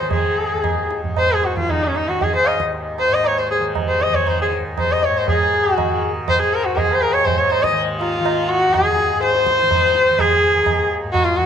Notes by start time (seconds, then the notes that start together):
Already playing: D#2 G#2 D#3 C5
0.02 D#3
0.11 G#4, tabla tin, tabla ge
0.25 G#4
0.53 D#2
0.64 tabla na, tabla ge
0.91 tabla te
1.04 G#2, tabla ge
1.17 C5, tabla na, tabla ge
1.30 G#4 C5
1.43 F#4, tabla te
1.55 D#3 F4 F#4, tabla ge
1.68 D#4 F4, tabla tin, tabla ge
1.81 C#4 D#4
1.95 D#4, tabla na
2.07 D#3 D#4 F#4
2.21 G#4, tabla tin, tabla ge
2.32 G#4 C5
2.44 D#5 F5, tabla na
2.58 D#2 D#5, tabla ke
2.72 tabla tin
2.98 C5, tabla na
3.08 G#2 C5
3.14 D#5
3.24 C#5 D#5, tabla na
3.37 C5 C#5
3.50 G#4 C5
3.59 D#3
3.75 tabla na, tabla ge
3.88 C5
3.95 C#5
4.01 C5 D#5, tabla te
4.10 D#3
4.14 C#5, tabla ge
4.27 C5, tabla na, tabla ge
4.39 G#4 C5
4.52 tabla te
4.59 D#2
4.78 C5, tabla na, tabla ge
4.89 C5 D#5
5.02 C#5 D#5, tabla te
5.09 G#2
5.17 C5
5.28 G#2 G#4, tabla tin, tabla ge
5.40 G#4
5.73 F#4
5.77 D#3, tabla na, tabla ge
6.27 D#3 C5, tabla na, tabla ge
6.40 G#4 C5
6.52 A#4, tabla te
6.66 F#4
6.75 D#2 G#4 A#4, tabla tin, tabla ge
6.89 G#4 C5
7.01 A#4, tabla na
7.13 C#5
7.24 G#2 C5, tabla tin, tabla ge
7.38 C5 C#5
7.50 C5, tabla na
7.63 D#5, tabla ke
7.72 D#3 D#5
7.76 tabla tin
8.00 F4, tabla na
8.13 F4
8.20 D#3
8.26 tabla na
8.49 F#4
8.62 F#4
8.67 D#2
8.73 G#4, tabla na, tabla ge
8.87 G#4
8.98 tabla te
9.15 G#2
9.23 C5, tabla te
9.30 C#5
9.35 C5, tabla te
9.46 tabla ke
9.59 D#3, tabla te
9.71 tabla na, tabla ge
9.95 tabla te
10.10 D#3
10.19 G#4, tabla tin, tabla ge
10.32 G#4
10.56 D#2
10.66 tabla na, tabla ge
11.04 G#2
11.13 F#4, tabla na, tabla ge
11.25 F4 F#4
11.37 F#4, tabla ge